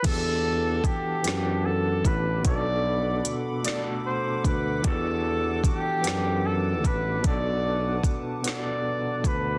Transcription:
0.03 tuba E2, tine electric piano E3 B3 D4 F#4, analog synth pad A4 F#5 A5 D6, flugelhorn A4, kick, closed hi-hat, crash
0.07 tine electric piano G4 A4
0.84 tuba F#2, flugelhorn G4, kick, closed hi-hat
1.23 tuba F#2, tine electric piano E3 B3 D4 F#5, closed hi-hat
1.28 tine electric piano G4 B4, snare
1.65 flugelhorn A4
2.05 tuba A1, flugelhorn B4, kick, closed hi-hat
2.43 tuba B1, tine electric piano B2 B3 C4, analog synth pad A4 F#5 B5, flugelhorn D5, kick, closed hi-hat
2.47 tine electric piano F#4 A4
2.52 tine electric piano D4
3.25 tuba D2, closed hi-hat
3.62 tine electric piano B2 A3 D4, flugelhorn D5, closed hi-hat
3.67 tine electric piano F#4 A4, snare
3.75 tine electric piano A4
4.06 flugelhorn C5
4.44 tuba D2, flugelhorn B4, kick, closed hi-hat
4.82 tuba E2, tine electric piano E3 B3 D4 F#4, analog synth pad A4 A5, flugelhorn A4, kick, closed hi-hat
4.87 tine electric piano G4 A4
5.64 tuba F#2, flugelhorn G4, kick, closed hi-hat
6.02 tuba F#2, tine electric piano E3 B3 D4 F#5, closed hi-hat
6.06 tine electric piano G4 B4, snare
6.46 flugelhorn A4
6.84 tuba A1, flugelhorn B4, kick, closed hi-hat
7.22 tuba B1, tine electric piano B2 B3 D4, analog synth pad B4 F#5, flugelhorn D5, kick, closed hi-hat
7.27 tine electric piano F#4 A4
8.03 tuba D2, kick, closed hi-hat
8.42 tine electric piano B2 B3 D4, closed hi-hat
8.46 tine electric piano F#4 A4, flugelhorn D5, snare
9.24 tuba D2, flugelhorn B4, kick, closed hi-hat

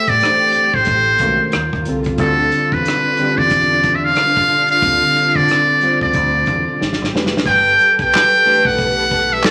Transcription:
Already playing: string section A3 C4 G4, muted trumpet E5
0.07 fingered electric bass A2, muted trumpet D5, kick, closed hi-hat
0.20 tine electric piano E3 A3 D4 G4 C5, cross-stick, closed hi-hat
0.52 muted fingered electric bass stroke, closed hi-hat
0.74 fingered electric bass A1, muted trumpet C5, kick
0.85 fingered electric bass A1, kick, closed hi-hat
1.18 fingered electric bass B1, tine electric piano D#3 G#3 C#4 F#4, kick, closed hi-hat
1.23 tine electric piano A#4
1.52 fingered electric bass D#2, string section A#2 A#3 F4, cross-stick, closed hi-hat
1.73 fingered electric bass D#2, kick
1.85 fingered electric bass C2, tine electric piano D3 G3 C4 F4 A4, closed hi-hat
2.04 kick, closed hi-hat
2.18 fingered electric bass D2, string section D3 C4 D4, tine electric piano D3 G3 C4 F4, muted trumpet A4, kick, closed hi-hat
2.22 tine electric piano A4
2.52 closed hi-hat
2.72 fingered electric bass E2, muted trumpet B4, kick
2.85 cross-stick, closed hi-hat
3.17 tine electric piano D3 G3 C4 F4, muted fingered electric bass stroke, closed hi-hat
3.21 tine electric piano G4
3.38 fingered electric bass E2, muted trumpet D5, kick
3.50 kick, closed hi-hat
3.83 kick, closed hi-hat
3.95 muted trumpet E5
4.04 muted trumpet F5
4.15 cross-stick, closed hi-hat
4.37 kick
4.49 closed hi-hat
4.68 muted trumpet F5, closed hi-hat
4.81 fingered electric bass D2, tine electric piano D3 G3 C4 F4 A4, kick, closed hi-hat
5.15 muted fingered electric bass stroke, closed hi-hat
5.35 fingered electric bass D3, muted trumpet D5, kick
5.48 cross-stick, closed hi-hat
5.81 tine electric piano D3 G3 C4 F4 C5, muted fingered electric bass stroke, closed hi-hat
6.01 fingered electric bass D2, muted trumpet D5, kick
6.13 fingered electric bass D2, kick, closed hi-hat
6.46 fingered electric bass E2, kick, closed hi-hat
6.80 fingered electric bass G#1, string section G3 G4, snare
6.93 snare
7.02 fingered electric bass G#1, snare
7.14 fingered electric bass F1, tine electric piano E3 A3 D4 G4 B4, snare
7.26 snare
7.37 snare
7.43 fingered electric bass G1, string section G3 G4 A4 B4, muted trumpet G5, kick, splash
7.79 closed hi-hat
7.99 fingered electric bass B1, muted trumpet G5, kick, closed hi-hat
8.12 snare, clap, closed hi-hat
8.45 tine electric piano E3 A3 D4 G4 B4, muted fingered electric bass stroke, closed hi-hat
8.65 fingered electric bass B1, muted trumpet F#5, kick
8.78 kick, closed hi-hat
9.11 kick, closed hi-hat
9.33 muted trumpet E5
9.43 muted trumpet D5, snare, clap, closed hi-hat

